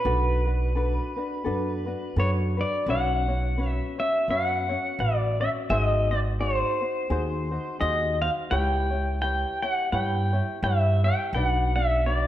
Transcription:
Already playing: pedal steel guitar B4
0.05 upright bass B1, ukulele D4 F#4 A4 B4
0.46 ukulele D4 F#4 B4
0.75 ukulele D4 F#4 A4 B4
1.16 ukulele D4 F#4 B4
1.44 upright bass F#2, ukulele D4 F#4 A4 B4
1.86 ukulele D4 F#4 B4
2.16 upright bass F#2, ukulele D4 F#4 A4 B4, pedal steel guitar C#5
2.57 ukulele D4 F#4 B4, pedal steel guitar D5
2.86 upright bass B1, ukulele C#4 F#4 B4 C#5, pedal steel guitar F#5
3.28 ukulele C#4 F#4 C#5
3.57 ukulele C#4 F#4 B4 C#5
3.69 pedal steel guitar E5
3.98 ukulele C#4 F#4 C#5, pedal steel guitar E5
4.28 upright bass F#2, ukulele C#4 F#4 B4 C#5, pedal steel guitar F#5
4.69 ukulele C#4 F#4 C#5
4.99 upright bass A1, ukulele F#4 B4, pedal steel guitar D5
5.40 ukulele C#4 F#4 C#5, pedal steel guitar E5
5.70 upright bass G#1, ukulele D#4 F#4 G#4 C5, pedal steel guitar E5
5.81 pedal steel guitar D#5
6.11 ukulele D#4 F#4 C5, pedal steel guitar D5
6.40 ukulele D#4 F#4 G#4 C5, pedal steel guitar C5
6.81 ukulele D#4 F#4 C5
7.10 upright bass D#2, ukulele D#4 F#4 G#4 C5
7.51 ukulele D#4 F#4 C5
7.80 upright bass D#2, ukulele D#4 F#4 G#4 C5, pedal steel guitar D#5
8.21 ukulele D#4 F#4 C5, pedal steel guitar F5
8.51 upright bass C#2, ukulele E4 G4 B4 C#5, pedal steel guitar G5
8.91 ukulele E4 G4 C#5
9.22 ukulele E4 G4 B4 C#5, pedal steel guitar G5
9.62 ukulele E4 G4 C#5, pedal steel guitar F#5
9.92 upright bass G2, ukulele E4 G4 B4 C#5, pedal steel guitar G5
10.33 ukulele E4 G4 C#5
10.63 upright bass G2, ukulele E4 G4 B4 C#5, pedal steel guitar E5
11.04 ukulele E4 G4 C#5, pedal steel guitar G5
11.33 upright bass B1, ukulele D4 F#4 B4 D5, pedal steel guitar G5
11.45 pedal steel guitar F#5
11.76 ukulele D4 F#4 D5, pedal steel guitar E5
12.06 ukulele D4 F#4 B4 D5, pedal steel guitar D5

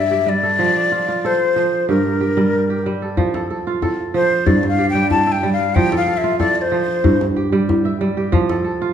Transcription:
Already playing: kora G2 G3 G4 E5, flute E5
0.11 kora G4
0.26 kora G3, flute D5
0.43 kora A4
0.59 kora F3
0.92 kora F4
1.08 kora F4
1.25 kora A4, flute C5
1.56 kora F3
1.89 kora G2 G4, flute A#4
2.21 kora G4
2.37 kora G3
2.70 kora G4
2.86 kora G3
3.02 kora A4
3.17 kora F3, djembe slap, djembe bass
3.34 kora A4, djembe slap
3.50 kora A4, djembe slap
3.67 kora F4
3.82 kora A4, djembe tone
4.14 kora F3, flute C5
4.46 kora G2, flute D5, djembe bass
4.63 djembe slap
4.69 flute F5
4.78 kora G4
4.90 flute G5
4.95 kora G3 G4
5.11 flute A5, djembe tone
5.27 kora E5, djembe slap
5.32 flute G5
5.43 kora G3
5.53 flute F5
5.60 djembe slap
5.75 kora F3, flute G5, djembe slap, djembe bass
5.92 kora A4, djembe slap
5.97 flute F5
6.08 kora A4, djembe slap
6.17 flute E5
6.24 kora F4
6.39 kora A4, flute D5, djembe tone
6.55 flute D5
6.62 flute C5
6.72 kora F3
7.04 kora G2, djembe bass
7.21 djembe slap
7.36 kora G4
7.52 kora G3 G4
7.69 djembe tone
7.85 kora E5, djembe slap
8.01 kora G3
8.17 kora G4, djembe slap
8.32 kora F3, djembe slap, djembe bass
8.49 kora A4, djembe slap
8.64 kora A4, djembe slap
8.81 kora F4

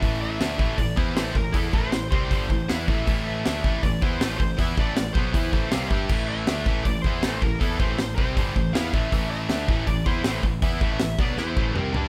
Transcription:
Already playing: lead electric guitar E5
0.02 picked electric bass A1, distorted electric guitar A2 E3 A3, kick, open hi-hat
0.22 lead electric guitar E5
0.40 picked electric bass D2, distorted electric guitar D3 A3 D4, snare, open hi-hat
0.58 picked electric bass A1, distorted electric guitar A2 E3 A3, kick
0.78 picked electric bass A1, distorted electric guitar A2 E3, lead electric guitar D5, kick, open hi-hat
0.96 picked electric bass E2, distorted electric guitar E3 B3 E4, lead electric guitar C5, kick
1.16 picked electric bass A1, distorted electric guitar A2 E3 A3, snare, open hi-hat
1.34 picked electric bass A1, distorted electric guitar A2 E3, lead electric guitar A#4, kick
1.52 picked electric bass E2, distorted electric guitar E3 B3 E4, kick, open hi-hat
1.57 distorted electric guitar E4, lead electric guitar A4
1.73 picked electric bass A1, distorted electric guitar A2 E3 A3, lead electric guitar C5, kick
1.92 picked electric bass A1, distorted electric guitar A2 E3, snare, open hi-hat
2.12 picked electric bass C2, distorted electric guitar C3 G3 C4, lead electric guitar C5, kick
2.31 picked electric bass G1, distorted electric guitar G2 D3 G3, kick, open hi-hat
2.49 picked electric bass A1, distorted electric guitar A2 E3, kick
2.69 picked electric bass E2, distorted electric guitar E3 B3 E4, lead electric guitar F5, snare, open hi-hat
2.88 picked electric bass A1, distorted electric guitar A2 E3 A3, lead electric guitar E5, kick
3.07 picked electric bass A1, distorted electric guitar A2 E3 A3, kick, open hi-hat
3.27 lead electric guitar E5
3.45 picked electric bass D2, distorted electric guitar D3 A3 D4, snare, open hi-hat
3.64 picked electric bass A1, distorted electric guitar A2 E3 A3, kick
3.83 picked electric bass A1, distorted electric guitar A2 E3, lead electric guitar D5, kick, open hi-hat
4.02 picked electric bass E2, distorted electric guitar E3 B3 E4, lead electric guitar C5, kick
4.21 picked electric bass A1, distorted electric guitar A2 E3 A3, snare, open hi-hat
4.38 picked electric bass A1, distorted electric guitar A2 E3, lead electric guitar C5, kick
4.58 picked electric bass E2, distorted electric guitar E3 B3 E4, lead electric guitar E5, kick, open hi-hat
4.77 picked electric bass A1, distorted electric guitar A2 E3 A3, lead electric guitar D5, kick
4.96 picked electric bass A1, distorted electric guitar A2 E3, snare, open hi-hat
5.14 picked electric bass B1, distorted electric guitar B2 F#3, lead electric guitar C5, kick
5.18 distorted electric guitar B3
5.34 picked electric bass E2, distorted electric guitar E3 B3 E4, kick, open hi-hat
5.52 picked electric bass A1, distorted electric guitar A2 E3 A3, kick
5.71 picked electric bass C2, distorted electric guitar C3 G3 C4, lead electric guitar F5, snare, open hi-hat
5.89 picked electric bass G2, lead electric guitar E5, kick
5.93 distorted electric guitar G3 D4 G4
6.09 picked electric bass A1, distorted electric guitar A2 E3 A3, kick, crash
6.29 lead electric guitar E5
6.47 picked electric bass D2, distorted electric guitar D3 A3 D4, snare, open hi-hat
6.66 picked electric bass A1, distorted electric guitar A2 E3 A3, kick
6.84 picked electric bass A1, distorted electric guitar A2 E3, lead electric guitar D5, kick, open hi-hat
7.02 picked electric bass E2, lead electric guitar C5, kick
7.06 distorted electric guitar E3 B3 E4
7.23 picked electric bass A1, distorted electric guitar A2 E3 A3, snare, open hi-hat
7.42 picked electric bass A1, distorted electric guitar A2 E3, lead electric guitar A#4, kick
7.60 picked electric bass E2, distorted electric guitar E3 B3 E4, lead electric guitar A4, kick, open hi-hat
7.79 picked electric bass A1, distorted electric guitar A2 E3 A3, lead electric guitar C5, kick
7.98 picked electric bass A1, distorted electric guitar A2 E3, snare, open hi-hat
8.16 picked electric bass C2, distorted electric guitar C3 G3 C4, lead electric guitar C5, kick
8.37 picked electric bass G1, distorted electric guitar G2 D3 G3, kick, open hi-hat
8.56 picked electric bass A1, distorted electric guitar A2 E3, kick
8.73 picked electric bass E2, distorted electric guitar E3 B3 E4, lead electric guitar F5, snare, open hi-hat
8.93 picked electric bass A1, distorted electric guitar A2 E3 A3, lead electric guitar E5, kick
9.12 picked electric bass A1, distorted electric guitar A2 E3 A3, kick, open hi-hat
9.31 lead electric guitar E5
9.49 picked electric bass D2, distorted electric guitar D3 A3 D4, snare, open hi-hat
9.68 picked electric bass A1, distorted electric guitar A2 E3 A3, kick
9.87 picked electric bass A1, distorted electric guitar A2 E3, lead electric guitar D5, kick, open hi-hat
10.06 picked electric bass E2, distorted electric guitar E3 B3 E4, lead electric guitar C5, kick
10.24 picked electric bass A1, distorted electric guitar A2 E3 A3, snare, open hi-hat
10.43 picked electric bass A1, distorted electric guitar A2 E3, kick
10.62 picked electric bass E2, distorted electric guitar E3 B3 E4, lead electric guitar E5, kick, open hi-hat
10.81 picked electric bass A1, distorted electric guitar A2 E3 A3, kick
10.92 lead electric guitar E5
10.99 picked electric bass A1, distorted electric guitar A2 E3, snare, open hi-hat
11.18 picked electric bass B1, distorted electric guitar B2 F#3 B3, lead electric guitar D5, kick
11.37 picked electric bass E2, distorted electric guitar E3 B3 E4, lead electric guitar C5, snare
11.57 picked electric bass A1, distorted electric guitar A2 E3 A3, kick
11.73 picked electric bass C2, distorted electric guitar C3 G3 C4, mid tom
11.80 lead electric guitar A#4
11.93 picked electric bass G2, distorted electric guitar G3 D4 G4, floor tom

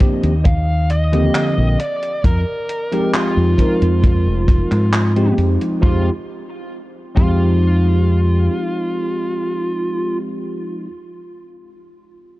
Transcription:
0.00 tine electric piano F3 A#3 C4 D4 G4, kick, closed hi-hat
0.23 fingered electric bass D#2, closed hi-hat
0.45 lead electric guitar F5, kick, closed hi-hat
0.90 lead electric guitar D#5, closed hi-hat
1.12 tine electric piano D3 F3 A#3 C4 G4, closed hi-hat
1.35 clap, closed hi-hat
1.58 fingered electric bass A#1
1.80 lead electric guitar D5, closed hi-hat
2.03 closed hi-hat
2.24 fingered electric bass F2, lead electric guitar A#4, kick, closed hi-hat
2.69 closed hi-hat
2.91 tine electric piano F3 G#3 C4 D#4 G4, closed hi-hat
3.14 lead electric guitar F4, clap, closed hi-hat
3.37 fingered electric bass F2
3.57 tine electric piano F3 G#3 C4 D#4 A#4, kick, closed hi-hat
3.82 fingered electric bass F2, closed hi-hat
4.04 kick, closed hi-hat
4.27 fingered electric bass F1
4.48 kick, closed hi-hat
4.71 fingered electric bass G#2, clap, closed hi-hat
4.93 clap, closed hi-hat
5.15 tine electric piano F3 G#3 C4 D#4 G4, closed hi-hat
5.38 fingered electric bass F2, closed hi-hat
5.61 closed hi-hat
5.81 fingered electric bass F2, tine electric piano F3 G#3 C4 D#4, lead electric guitar F4, kick
5.85 tine electric piano G4
7.15 fingered electric bass F2, tine electric piano F3 G#3 C4 D#4, lead electric guitar F4, kick
7.19 tine electric piano G4

